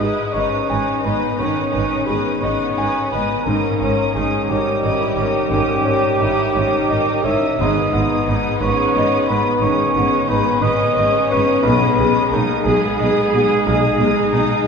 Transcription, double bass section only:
0.35 0.43 G#1 soft
0.71 0.79 G#1 soft
1.05 1.13 G#1 soft
1.41 1.49 G#1 soft
1.76 1.84 G#1 soft
2.11 2.19 G#1 soft
2.45 2.53 G#1 soft
2.79 2.87 G#1 soft
3.13 3.21 G#1 soft
3.47 3.55 G#1 soft
3.81 3.89 G#1 soft
4.16 4.24 G#1 soft
4.50 4.58 G#1 soft
4.84 4.92 G#1 soft
5.17 5.25 G#1 soft
5.51 5.59 G#1 soft
5.86 5.94 G#1 soft
6.21 6.29 G#1 soft
6.57 6.65 G#1 soft
6.91 6.99 G#1 soft
7.24 7.32 G#1 soft
7.59 7.67 G#1 medium
7.95 8.03 G#1 medium
8.28 8.36 G#1 soft
8.62 8.70 G#1 medium
8.97 9.05 G#1 soft
9.29 9.37 G#1 soft
9.62 9.70 G#1 medium
9.96 10.04 G#1 soft
10.30 10.38 G#1 soft
10.63 10.71 G#1 medium
10.98 11.06 G#1 soft
11.34 11.42 G#1 soft
11.66 11.74 B1 medium
12.00 12.08 B1 medium
12.33 12.41 B1 medium
12.66 12.74 B1 medium
13.00 13.08 B1 medium
13.34 13.42 B1 soft
13.67 13.75 B1 medium
13.99 14.07 B1 medium
14.32 14.40 B1 medium

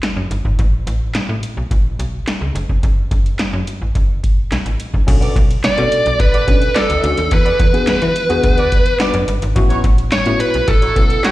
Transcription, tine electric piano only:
5.07 5.37 C#4 medium
5.07 5.37 D4 medium
5.07 5.37 F#4 medium
5.07 5.37 A4 loud
5.77 6.07 C#4 medium
5.77 6.07 D4 medium
5.77 6.07 F#4 medium
5.77 6.07 A4 medium
6.47 6.71 C#4 medium
6.47 6.71 D4 medium
6.47 6.71 F#4 medium
6.47 6.71 A4 medium
7.03 7.31 C#4 medium
7.03 7.31 D4 medium
7.03 7.32 F#4 medium
7.03 7.32 A4 loud
7.73 7.97 B3 medium
7.73 7.97 D4 medium
7.73 7.97 F#4 medium
7.73 7.98 G#4 medium
8.29 8.59 B3 loud
8.29 8.59 D4 medium
8.29 8.60 F#4 medium
8.29 8.60 G#4 loud
8.99 9.23 B3 medium
8.99 9.24 D4 medium
8.99 9.24 F#4 medium
8.99 9.24 B4 medium
9.55 9.85 B3 medium
9.55 9.86 C#4 medium
9.55 9.86 E4 medium
9.55 9.86 F#4 loud
10.26 10.56 B3 medium
10.26 10.56 C#4 medium
10.26 10.56 E4 medium
10.26 10.56 F#4 medium
10.96 11.20 B3 medium
10.96 11.20 C#4 medium
10.96 11.20 E4 medium
10.96 11.20 A4 medium

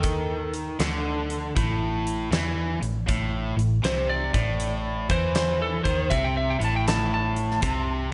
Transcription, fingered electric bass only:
0.00 0.76 D#2 medium
0.80 1.52 D2 medium
1.57 2.28 A1 medium
2.31 2.78 E2 medium
2.82 3.06 A1 medium
3.09 3.54 A1 medium
3.57 3.81 A1 medium
3.84 4.30 C2 medium
4.35 5.06 A1 medium
5.10 5.81 E2 medium
5.85 6.09 D#2 medium
6.11 6.57 C2 medium
6.61 7.58 A1 medium
7.63 8.09 C2 medium

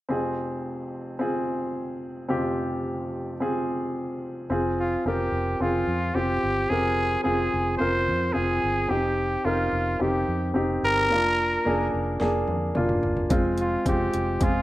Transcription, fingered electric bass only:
4.50 4.95 F1 medium
5.05 5.28 F1 medium
5.32 5.55 F1 medium
5.60 5.83 F1 medium
5.87 6.10 F2 medium
6.15 6.38 F1 medium
6.43 6.66 G1 medium
6.71 7.16 F1 medium
7.26 7.48 F1 medium
7.54 7.76 F1 medium
7.81 8.09 F1 medium
8.08 8.31 F2 medium
8.36 8.58 F1 medium
8.64 8.86 G1 medium
8.90 9.36 F1 medium
9.45 9.68 F1 medium
9.73 9.95 F1 medium
10.01 10.23 F1 medium
10.28 10.51 F2 medium
10.55 10.78 F1 medium
10.83 11.11 G1 medium
11.11 11.56 F1 medium
11.66 11.89 F1 medium
11.94 12.16 F1 medium
12.21 12.43 F1 medium
12.48 12.71 F2 medium
12.77 12.99 F1 medium
13.04 13.27 G1 medium
13.30 13.76 F1 medium
13.86 14.09 F1 medium
14.14 14.37 F1 medium
14.41 14.62 F1 medium

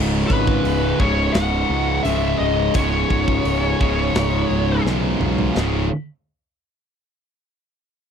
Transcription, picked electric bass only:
0.00 0.23 C#1 medium
0.30 0.59 G#1 medium
0.64 0.93 C#1 medium
1.00 1.28 C#1 medium
1.35 1.63 C#1 medium
1.70 1.99 C#2 medium
2.05 2.34 C#1 medium
2.40 2.69 C#1 medium
2.75 3.04 C#1 loud
3.11 3.39 C#1 medium
3.45 3.74 C#1 medium
3.81 4.09 C#1 medium
4.14 4.44 C#1 medium
4.51 4.79 C#1 medium
4.85 5.14 B1 medium
5.20 5.49 B1 medium
5.57 5.89 C#1 medium

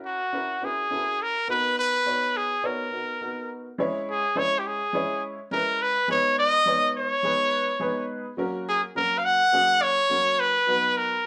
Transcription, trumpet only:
0.06 0.66 F#4 medium
0.65 1.24 G#4 medium
1.22 1.50 A#4 loud
1.51 1.77 B4 loud
1.79 2.38 B4 loud
2.37 2.67 G#4 medium
2.66 3.51 A#4 medium
4.11 4.40 G#4 medium
4.39 4.60 C#5 loud
4.59 4.68 G4 medium
4.67 5.24 G#4 medium
5.53 5.84 A#4 loud
5.82 6.10 B4 loud
6.11 6.37 C#5 loud
6.39 6.92 D#5 loud
6.98 8.07 C#5 loud
8.69 8.81 G#4 medium
8.97 9.20 A#4 loud
9.18 9.26 F5 medium
9.25 9.84 F#5 loud
9.82 10.41 C#5 loud
10.40 10.99 B4 loud
10.97 11.27 A#4 medium

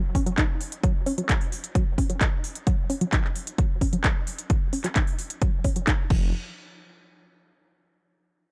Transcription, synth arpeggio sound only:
0.15 0.21 C#4 medium
0.26 0.30 F#3 medium
0.38 0.43 D#4 medium
0.83 0.92 F#3 loud
1.06 1.12 C#4 medium
1.18 1.21 F#3 medium
1.29 1.35 D#4 medium
1.75 1.84 F#3 loud
1.98 2.04 C#4 medium
2.10 2.13 F#3 medium
2.21 2.27 D#4 medium
2.67 2.75 F#3 loud
2.90 2.95 C#4 medium
3.01 3.05 F#3 medium
3.12 3.18 D#4 medium
3.58 3.67 F#3 loud
3.81 3.87 C#4 medium
3.93 3.96 F#3 medium
4.04 4.10 D#4 medium
4.50 4.59 F#3 loud
4.73 4.79 C#4 medium
4.84 4.88 F#3 medium
4.96 5.02 D#4 medium
5.42 5.50 F#3 loud
5.64 5.70 C#4 medium
5.76 5.79 F#3 medium
5.87 5.93 D#4 medium
6.10 6.31 F3 medium

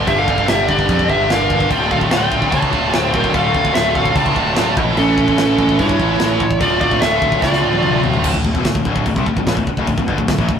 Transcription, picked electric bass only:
0.07 0.26 G1 loud
0.28 0.46 G1 medium
0.49 0.67 G1 medium
0.68 0.87 G1 medium
0.89 1.07 F2 loud
1.09 1.28 G1 medium
1.31 1.49 G1 loud
1.50 1.69 G1 medium
1.70 1.89 D1 medium
1.91 2.10 D1 medium
2.11 2.30 D1 medium
2.32 2.50 D1 medium
2.52 2.71 C#2 medium
2.73 2.91 D1 medium
2.93 3.12 D1 loud
3.14 3.32 D1 medium
3.34 3.53 D1 loud
3.55 3.73 D1 medium
3.75 3.93 D1 medium
3.95 4.14 D1 loud
4.16 4.34 C#2 loud
4.36 4.55 D1 medium
4.57 4.77 D1 loud
4.77 4.95 A1 medium
4.98 5.16 A1 loud
5.18 5.36 A1 medium
5.39 5.57 A1 medium
5.58 5.77 A1 loud
5.79 5.98 G2 loud
6.00 6.18 A1 medium
6.21 6.39 A1 loud
6.40 6.59 A1 loud
6.60 6.79 D1 medium
6.81 7.00 D1 medium
7.02 7.20 D1 loud
7.22 7.40 D1 medium
7.42 7.61 C#2 medium
7.64 7.82 D1 medium
7.84 8.02 D1 loud
8.04 8.22 D1 medium
8.24 8.34 D1 loud
8.35 8.44 D1 medium
8.44 8.54 D1 medium
8.55 8.64 E1 loud
8.65 8.75 D1 medium
8.75 8.85 D1 medium
8.85 9.04 D1 loud
9.06 9.16 D1 medium
9.16 9.26 C2 loud
9.26 9.36 D1 medium
9.37 9.46 D1 medium
9.47 9.56 A1 loud
9.57 9.67 D1 medium
9.67 muted picked electric bass stroke soft
9.78 9.87 D1 medium
9.87 9.97 D1 medium
9.98 10.07 D1 medium
10.08 10.18 G1 loud
10.19 10.28 D1 medium
10.28 10.38 D1 medium
10.38 10.48 A1 medium
10.49 10.59 D1 medium

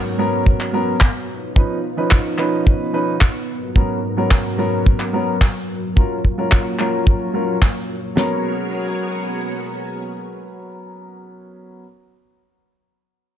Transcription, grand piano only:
0.00 0.15 F#3 medium
0.00 0.15 B3 medium
0.00 0.16 C#4 medium
0.00 0.16 A#4 medium
0.18 0.70 F#3 medium
0.18 0.70 B3 medium
0.18 0.71 C#4 medium
0.18 0.71 A#4 loud
0.73 0.94 F#3 medium
0.73 0.94 B3 medium
0.73 0.94 C#4 medium
0.73 0.95 A#4 loud
1.55 1.77 F3 medium
1.55 1.77 C#4 medium
1.55 1.77 D#4 medium
1.55 1.77 B4 medium
1.97 2.35 F3 medium
1.97 2.35 C#4 medium
1.97 2.36 D#4 medium
1.97 2.36 B4 medium
2.38 2.90 F3 medium
2.38 2.90 C#4 medium
2.38 2.90 D#4 medium
2.38 2.91 B4 loud
2.93 3.14 F3 medium
2.93 3.14 C#4 medium
2.93 3.15 D#4 medium
2.93 3.15 B4 loud
3.75 3.97 F#3 medium
3.75 3.97 B3 medium
3.75 3.97 C#4 medium
3.75 3.97 A#4 medium
4.17 4.55 F#3 medium
4.17 4.55 B3 medium
4.17 4.56 C#4 medium
4.17 4.56 A#4 medium
4.58 5.10 F#3 medium
4.58 5.10 B3 medium
4.58 5.11 C#4 medium
4.58 5.11 A#4 loud
5.13 5.34 F#3 medium
5.13 5.35 B3 medium
5.13 5.35 C#4 medium
5.13 5.35 A#4 medium
5.96 6.17 F#3 medium
5.96 6.17 C#4 medium
5.96 6.17 F4 medium
5.96 6.18 A#4 medium
6.38 6.76 F#3 medium
6.38 6.76 C#4 medium
6.38 6.76 F4 medium
6.38 6.76 A#4 medium
6.79 7.31 F#3 medium
6.79 7.31 C#4 medium
6.79 7.31 F4 medium
6.79 7.31 A#4 loud
7.34 7.55 F#3 medium
7.34 7.55 C#4 medium
7.34 7.55 F4 medium
7.34 7.55 A#4 medium
8.15 11.82 F#3 medium
8.15 11.83 B3 medium
8.15 11.83 C#4 medium
8.15 11.84 A#4 medium

